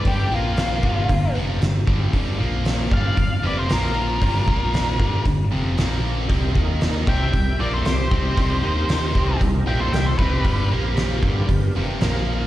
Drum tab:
HH |o-o-o-o-|o-o-o-o-|o-o-o-o-|o-o-o-o-|
SD |--o---o-|--o---o-|--o---o-|--o---o-|
BD |o--oo--o|o--oo---|oo-oo---|oo-oo--o|

HH |o-o-o-o-|o-o-o-o-|
SD |--o---o-|--o---o-|
BD |o--oo--o|o--oo---|